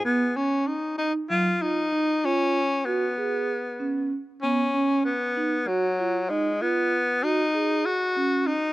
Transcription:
<<
  \new Staff \with { instrumentName = "Vibraphone" } { \time 7/8 \key gis \dorian \tempo 4 = 96 b8 cis'4 dis'8 fis8 eis'8 dis'8 | eis'4 fis'8 gis'4 cis'4 | b8 cis'4 dis'8 fis'8 eis'8 dis'8 | eis'4 fis'8 gis'4 cis'4 | }
  \new Staff \with { instrumentName = "Tenor saxophone" } { \time 7/8 \key gis \dorian b8 cis'8 dis'8 dis'8 eis'8 dis'4 | cis'4 b2 r8 | cis'4 b4 fis4 gis8 | b4 dis'4 fis'4 dis'8 | }
>>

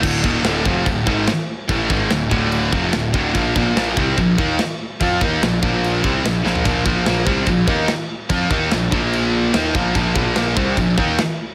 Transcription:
<<
  \new Staff \with { instrumentName = "Distorted electric guitar" } { \clef bass \time 4/4 \key bes \major \tempo 4 = 145 <d, a, d>8 <ees, bes, ees>8 <d, a, d>8 <f, c f>8 <d, a,>8 <gis, ees gis>8 r4 | <a, e a>8 <gis, ees gis>8 <d, a,>8 <d, a, d>4 <f, c f>8 <d, a,>8 <d, a, d>8 | <bes, f bes>8 <bes, f bes>8 <bes, f bes>8 <c g c'>8 <bes, f>8 <ees bes ees'>8 r4 | <f c' f'>8 <ees bes ees'>8 <bes, f>8 <bes, f bes>4 <c g c'>8 <bes, f>8 <bes, f bes>8 |
<bes, f bes>8 <bes, f bes>8 <bes, f bes>8 <c g c'>8 <bes, f>8 <ees bes ees'>8 r4 | <f c' f'>8 <ees bes ees'>8 <bes, f>8 <bes, f bes>4. <ees bes ees'>8 <bes, f bes>8 | <bes, f bes>8 <bes, f bes>8 <bes, f bes>8 <c g c'>8 <bes, f>8 <ees bes ees'>8 r4 | }
  \new Staff \with { instrumentName = "Distorted electric guitar" } { \clef bass \time 4/4 \key bes \major <d, a, d>8 <ees, bes, ees>8 <d, a, d>8 <f, c f>8 <d, a,>8 <gis, ees gis>8 r4 | <a, e a>8 <gis, ees gis>8 <d, a,>8 <d, a, d>4 <f, c f>8 <d, a,>8 <d, a, d>8 | <bes, f bes>8 <bes, f bes>8 <bes, f bes>8 <c g c'>8 <bes, f>8 <ees bes ees'>8 r4 | <f c' f'>8 <ees bes ees'>8 <bes, f>8 <bes, f bes>4 <c g c'>8 <bes, f>8 <bes, f bes>8 |
<bes, f bes>8 <bes, f bes>8 <bes, f bes>8 <c g c'>8 <bes, f>8 <ees bes ees'>8 r4 | <f c' f'>8 <ees bes ees'>8 <bes, f>8 <bes, f bes>4. <ees bes ees'>8 <bes, f bes>8 | <bes, f bes>8 <bes, f bes>8 <bes, f bes>8 <c g c'>8 <bes, f>8 <ees bes ees'>8 r4 | }
  \new Staff \with { instrumentName = "Overdriven electric guitar" } { \clef bass \time 4/4 \key bes \major <d, a, d>8 <ees, bes, ees>8 <d, a, d>8 <f, c f>8 <d, a,>8 <gis, ees gis>8 r4 | <a, e a>8 <gis, ees gis>8 <d, a,>8 <d, a, d>4 <f, c f>8 <d, a,>8 <d, a, d>8 | <bes, f bes>8 <bes, f bes>8 <bes, f bes>8 <c g c'>8 <bes, f>8 <ees bes ees'>8 r4 | <f c' f'>8 <ees bes ees'>8 <bes, f>8 <bes, f bes>4 <c g c'>8 <bes, f>8 <bes, f bes>8 |
<bes, f bes>8 <bes, f bes>8 <bes, f bes>8 <c g c'>8 <bes, f>8 <ees bes ees'>8 r4 | <f c' f'>8 <ees bes ees'>8 <bes, f>8 <bes, f bes>4. <ees bes ees'>8 <bes, f bes>8 | <bes, f bes>8 <bes, f bes>8 <bes, f bes>8 <c g c'>8 <bes, f>8 <ees bes ees'>8 r4 | }
  \new Staff \with { instrumentName = "Picked electric bass" } { \clef bass \time 4/4 \key bes \major d,,8 ees,,8 d,,8 f,,8 d,,8 gis,,8 r4 | a,,8 gis,,8 d,,8 d,,4 f,,8 d,,8 d,,8 | bes,,8 bes,,8 bes,,8 c,8 bes,,8 ees,8 r4 | f,8 ees,8 bes,,8 bes,,4 c,8 bes,,8 bes,,8 |
bes,,8 bes,,8 bes,,8 c,8 bes,,8 ees,8 r4 | f,8 ees,8 bes,,8 bes,,4. ees,8 bes,,8 | bes,,8 bes,,8 bes,,8 c,8 bes,,8 ees,8 r4 | }
  \new DrumStaff \with { instrumentName = "Drums" } \drummode { \time 4/4 <cymc bd>8 bd8 <cymc sn>8 bd8 <cymc bd>8 bd8 <cymc sn>4 | <cymc bd>8 bd8 <cymc sn>8 bd8 cymc8 bd8 <cymc sn>8 bd8 | <cymc bd>8 bd8 <cymc sn>8 bd8 <cymc bd>8 bd8 <cymc sn>4 | <cymc bd>8 bd8 <cymc sn>8 bd8 cymc8 bd8 <cymc sn>8 sn16 tomfh16 |
<cymc bd>8 bd8 <cymc sn>8 bd8 <cymc bd>8 bd8 <cymc sn>4 | <cymc bd>8 bd8 <cymc sn>8 bd8 cymc4 <cymc sn>8 bd8 | <cymc bd>8 bd8 <cymc sn>8 bd8 <cymc bd>8 bd8 <cymc sn>4 | }
>>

